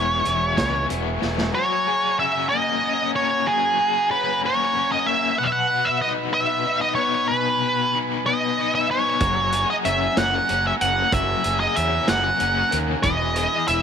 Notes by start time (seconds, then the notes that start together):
Already playing: E1 E3 G#3 B3 E4 C#5 E5 G#5 C#6
0.25 E1 E3 G#3 B3 E4, closed hi-hat
0.57 C#2 G#3 B3 E4, kick, snare, closed hi-hat
0.89 E1 E3 G#3 B3 E4, closed hi-hat
1.22 E1 G#3 B3 E4, snare
1.38 snare
1.52 F#3 C#5 F#5 G#5 A#5
1.87 G#4
2.19 C#4 E5
2.49 A#3 D#5
2.83 C#4
3.14 A#3 C#5
3.47 F#3 G#4
3.79 G#4
4.11 C#4 B4
4.43 A#3 C#5
4.75 C#4
4.92 D#5
5.07 A#3 E5
5.37 B2 B4 F#5 B5
5.43 E5
5.52 F#5
5.71 F#4
5.85 E5
6.02 D#4 D#5
6.34 B3 E5
6.66 D#4
6.81 D#5
6.95 B3 C#5
7.28 B2 B4 G#5
7.63 F#4
7.95 D#4
8.26 B3 D#5
8.59 D#4
8.75 E5
8.91 B3 C#5
9.20 F#1 F#3 F#5 A#5, kick, closed hi-hat
9.52 G#4, closed hi-hat
9.70 D#5
9.84 F#1 C#4 E5, closed hi-hat
10.17 F#1 A#3 F#5, snare, closed hi-hat
10.49 F#1 C#4, closed hi-hat
10.67 E5
10.80 F#1 A#3 F#5, closed hi-hat
11.12 F#1 F#3 E5, kick, closed hi-hat
11.44 F#1 G#4, closed hi-hat
11.60 D#5
11.76 E2 C#4 E5, closed hi-hat
12.08 F#1 A#3 F#5, snare, closed hi-hat
12.40 F#1 C#4, closed hi-hat
12.71 D#2 A#3, closed hi-hat
13.03 E1 E3 E4 D#5 B5, kick, closed hi-hat
13.36 G#4, closed hi-hat
13.67 E1 E4 E5, closed hi-hat